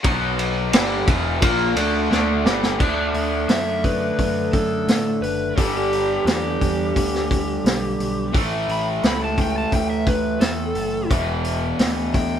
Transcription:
0.03 0.69 B1 medium
0.03 0.72 B2 medium
0.03 0.72 F#3 medium
0.03 0.72 B3 loud
0.03 kick loud
0.03 ride medium
0.39 ride medium
0.73 1.05 G1 medium
0.73 1.06 G2 medium
0.73 1.06 D3 loud
0.73 1.07 G3 loud
0.73 snare loud
0.73 ride medium
1.07 1.39 E1 medium
1.07 1.41 E2 medium
1.07 1.41 B2 medium
1.07 1.41 E3 loud
1.07 kick medium
1.07 ride medium
1.41 1.74 A#1 medium
1.41 1.75 A#2 medium
1.41 1.75 F3 medium
1.41 1.75 A#3 medium
1.41 kick medium
1.41 ride medium
1.76 2.08 D2 medium
1.76 2.08 D3 medium
1.76 2.09 A3 medium
1.76 2.09 D4 medium
1.76 ride medium
2.09 2.43 D2 medium
2.09 2.44 D3 medium
2.09 2.44 A3 medium
2.09 2.44 D4 medium
2.09 snare medium
2.45 2.77 G1 medium
2.45 2.78 G2 medium
2.45 2.77 D3 medium
2.45 2.79 G3 medium
2.45 snare medium
2.63 snare medium
2.78 3.11 D2 medium
2.78 5.54 D3 medium
2.78 5.54 A3 medium
2.78 5.55 D4 medium
2.78 kick medium
2.78 crash medium
3.14 3.45 D2 medium
3.14 open hi-hat soft
3.49 4.10 F#2 medium
3.49 3.83 E5 medium
3.49 snare loud
3.49 open hi-hat medium
3.84 4.51 B4 medium
3.84 kick medium
3.84 open hi-hat soft
4.19 4.49 F#2 medium
4.19 kick medium
4.19 open hi-hat medium
4.53 4.84 F#2 medium
4.53 5.20 A4 medium
4.53 kick medium
4.53 open hi-hat soft
4.87 5.18 A2 medium
4.87 snare medium
4.87 open hi-hat medium
5.21 5.52 F#1 medium
5.21 5.59 B4 medium
5.21 open hi-hat soft
5.56 6.18 G1 medium
5.56 8.31 G2 medium
5.56 8.32 D3 medium
5.56 8.32 G3 medium
5.56 5.74 A4 medium
5.56 kick medium
5.56 open hi-hat medium
5.77 6.26 G4 medium
5.93 open hi-hat soft
6.25 6.56 E2 medium
6.25 8.31 G4 medium
6.25 snare loud
6.25 open hi-hat medium
6.61 6.92 E2 medium
6.61 kick medium
6.61 open hi-hat soft
6.96 7.56 D2 medium
6.96 kick medium
6.96 open hi-hat medium
7.14 snare soft
7.31 kick medium
7.31 open hi-hat medium
7.64 7.95 B1 medium
7.64 snare loud
7.64 open hi-hat medium
8.00 8.30 B1 medium
8.00 open hi-hat soft
8.33 8.65 A1 medium
8.33 11.08 A2 medium
8.33 11.08 E3 medium
8.33 11.09 A3 medium
8.33 kick loud
8.33 open hi-hat medium
8.68 8.99 A1 medium
8.68 8.86 B5 medium
8.68 open hi-hat soft
9.03 9.64 C#2 medium
9.03 snare medium
9.03 open hi-hat medium
9.07 9.22 B5 medium
9.24 9.39 A5 medium
9.38 kick medium
9.38 open hi-hat soft
9.42 9.56 G5 medium
9.58 9.73 A5 medium
9.72 10.03 D2 medium
9.72 9.90 G5 medium
9.72 kick medium
9.72 open hi-hat medium
9.90 10.06 E5 medium
10.06 10.37 D2 medium
10.06 10.41 B4 medium
10.06 kick medium
10.06 open hi-hat soft
10.40 10.71 E2 medium
10.40 11.08 A4 loud
10.40 snare loud
10.40 open hi-hat medium
10.75 11.06 F#1 medium
10.75 open hi-hat soft
11.10 11.72 E1 medium
11.10 12.39 E2 medium
11.10 12.39 B2 medium
11.10 12.39 E3 medium
11.10 kick medium
11.10 open hi-hat medium
11.44 open hi-hat soft
11.79 12.10 D2 medium
11.79 snare medium
11.79 open hi-hat medium
12.14 12.39 D2 medium
12.14 12.39 G5 medium
12.14 kick medium
12.14 open hi-hat soft

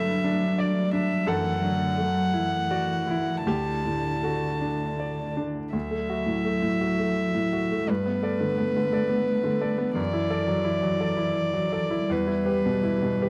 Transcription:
0.00 1.24 G2 medium
0.00 0.11 D3 soft
0.00 1.29 F#3 medium
0.00 0.45 A3 soft
0.00 3.44 A3 medium
0.00 1.28 D4 medium
0.00 0.55 B4 medium
0.00 0.61 E5 medium
0.00 3.46 E5 medium
0.24 0.80 D4 soft
0.58 1.14 D5 soft
0.58 0.94 D5 soft
0.93 1.28 D4 soft
0.93 1.30 E5 soft
1.27 3.42 F#2 medium
1.27 1.66 E3 medium
1.27 3.46 E4 medium
1.27 2.67 A4 medium
1.27 3.47 F#5 medium
1.61 2.02 D3 soft
1.61 2.19 F#3 soft
1.98 2.37 F#3 soft
1.98 2.56 A3 soft
2.34 3.47 E3 soft
2.34 2.93 E4 soft
2.71 3.06 F#4 medium
2.71 3.32 D5 soft
3.07 3.09 E4 soft
3.07 3.45 E4 soft
3.45 5.70 D2 soft
3.45 5.50 D3 soft
3.45 5.69 A3 medium
3.45 5.73 D4 medium
3.45 4.19 G4 medium
3.45 5.69 D5 medium
3.45 5.33 A5 soft
3.85 4.46 A2 soft
4.23 4.84 A3 soft
4.23 4.96 F#4 soft
4.61 5.22 D4 soft
5.00 5.60 D5 soft
5.37 5.74 D4 soft
5.73 7.85 D2 soft
5.73 7.86 F#3 soft
5.73 7.91 E5 soft
5.91 6.20 A3 soft
6.09 6.26 F#4 soft
6.09 6.26 E5 soft
6.26 6.56 A2 soft
6.45 6.74 A3 soft
6.62 6.92 A2 soft
6.81 6.97 F#4 soft
6.81 6.98 E5 soft
6.98 7.56 A3 soft
7.35 7.64 A2 soft
7.53 7.69 F#4 soft
7.53 7.69 E5 soft
7.71 7.89 A3 soft
7.88 9.94 G2 soft
7.88 9.94 A3 soft
7.88 9.98 B4 soft
8.06 8.35 B3 soft
8.23 8.40 A4 soft
8.23 8.40 D5 soft
8.40 8.70 D3 soft
8.58 8.87 B3 soft
8.76 9.05 D3 soft
8.92 9.09 A4 soft
8.92 9.10 D5 soft
9.09 9.66 B3 soft
9.44 9.73 D3 soft
9.61 9.78 A4 soft
9.61 9.78 D5 soft
9.78 9.97 B3 soft
9.95 12.05 F#2 soft
9.95 12.07 E3 medium
9.95 12.13 D5 soft
10.13 10.42 E4 soft
10.30 10.47 A4 soft
10.30 10.48 D5 soft
10.47 10.77 F#3 soft
10.64 10.94 E4 soft
10.82 11.12 F#3 soft
11.00 11.17 A4 soft
11.00 11.18 D5 soft
11.17 11.76 E4 soft
11.53 11.84 F#3 soft
11.72 11.90 A4 soft
11.72 11.90 D5 soft
11.90 12.10 E4 soft
12.10 13.29 E2 soft
12.10 13.29 G3 soft
12.10 13.29 B4 soft
12.27 12.58 E4 soft
12.45 12.63 G4 soft
12.45 12.64 B4 soft
12.66 12.96 B2 soft
12.83 13.14 E4 soft
13.02 13.29 B2 soft
13.22 13.29 G4 soft
13.22 13.29 B4 soft

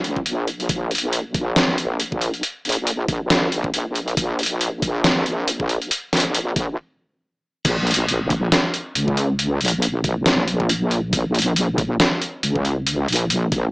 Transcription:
0.00 0.24 C#2 loud
0.04 closed hi-hat soft
0.16 kick medium
0.26 0.68 A#1 medium
0.26 closed hi-hat medium
0.47 closed hi-hat soft
0.60 closed hi-hat soft
0.69 1.33 A#1 loud
0.69 kick loud
0.69 closed hi-hat medium
0.91 closed hi-hat soft
0.95 closed hi-hat medium
0.98 closed hi-hat medium
1.13 closed hi-hat medium
1.34 1.77 A#1 loud
1.34 kick loud
1.34 closed hi-hat medium
1.56 snare loud
1.56 closed hi-hat medium
1.78 2.42 A#1 loud
1.78 closed hi-hat soft
2.00 closed hi-hat medium
2.12 kick medium
2.21 closed hi-hat soft
2.34 closed hi-hat soft
2.43 closed hi-hat medium
2.65 3.29 A#1 loud
2.65 closed hi-hat soft
2.69 closed hi-hat medium
2.72 closed hi-hat medium
2.87 closed hi-hat medium
3.08 kick loud
3.08 closed hi-hat soft
3.30 3.72 A#1 medium
3.30 snare loud
3.30 closed hi-hat medium
3.52 closed hi-hat soft
3.64 kick medium
3.74 4.16 A#1 medium
3.74 closed hi-hat medium
3.95 closed hi-hat soft
4.08 closed hi-hat soft
4.17 4.81 A#1 loud
4.17 kick loud
4.17 closed hi-hat medium
4.39 closed hi-hat soft
4.43 closed hi-hat medium
4.46 closed hi-hat medium
4.61 closed hi-hat medium
4.82 5.24 A#1 loud
4.82 kick loud
4.82 closed hi-hat medium
5.04 snare loud
5.04 closed hi-hat medium
5.26 5.90 A#1 loud
5.26 closed hi-hat soft
5.48 closed hi-hat medium
5.60 kick medium
5.69 closed hi-hat medium
5.82 closed hi-hat soft
5.91 closed hi-hat medium
6.13 6.77 A#1 loud
6.13 snare medium
6.13 closed hi-hat soft
6.17 closed hi-hat medium
6.20 closed hi-hat medium
6.34 closed hi-hat medium
6.56 kick loud
6.56 closed hi-hat medium
7.65 8.51 A#1 loud
7.65 kick loud
7.65 closed hi-hat medium
7.65 crash loud
7.87 closed hi-hat medium
7.91 closed hi-hat medium
7.94 closed hi-hat medium
8.08 closed hi-hat medium
8.30 kick loud
8.30 closed hi-hat medium
8.52 snare loud
8.52 closed hi-hat medium
8.74 closed hi-hat medium
8.95 9.59 C#2 loud
8.95 closed hi-hat medium
9.08 kick medium
9.17 closed hi-hat medium
9.39 closed hi-hat medium
9.61 10.46 A#1 loud
9.61 closed hi-hat medium
9.65 closed hi-hat medium
9.68 closed hi-hat medium
9.82 closed hi-hat medium
10.04 kick loud
10.04 closed hi-hat medium
10.26 snare loud
10.26 closed hi-hat medium
10.48 11.11 A#1 loud
10.48 closed hi-hat medium
10.60 kick medium
10.69 closed hi-hat medium
10.91 closed hi-hat medium
11.13 11.98 A#1 loud
11.13 kick loud
11.13 closed hi-hat medium
11.35 closed hi-hat soft
11.39 closed hi-hat medium
11.42 closed hi-hat medium
11.56 closed hi-hat medium
11.78 kick loud
11.78 closed hi-hat medium
12.00 snare loud
12.00 closed hi-hat medium
12.22 closed hi-hat medium
12.43 13.07 C#2 medium
12.43 closed hi-hat medium
12.56 kick medium
12.65 closed hi-hat medium
12.87 closed hi-hat medium
13.08 13.71 A#1 loud
13.08 closed hi-hat soft
13.12 closed hi-hat medium
13.16 closed hi-hat medium
13.30 closed hi-hat medium
13.52 kick loud
13.52 closed hi-hat medium

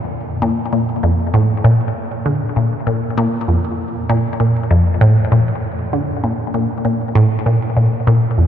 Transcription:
0.42 0.56 A#2 medium
0.73 0.87 A#2 medium
1.03 1.25 F2 loud
1.34 1.48 A2 loud
1.64 1.73 A#2 loud
2.26 2.40 D3 medium
2.56 2.71 A#2 medium
2.87 3.01 A#2 medium
3.18 3.26 A#2 loud
3.48 3.57 F2 medium
4.09 4.24 A#2 loud
4.40 4.54 A#2 medium
4.71 4.92 F2 loud
5.01 5.15 A2 loud
5.32 5.40 A#2 loud
5.93 6.07 D3 medium
6.24 6.38 A#2 medium
6.54 6.69 A#2 medium
6.85 6.93 A#2 medium
7.15 7.24 A2 loud
7.46 7.55 A#2 medium
7.77 7.91 A#2 medium
8.07 8.16 A#2 loud
8.38 8.46 F2 medium

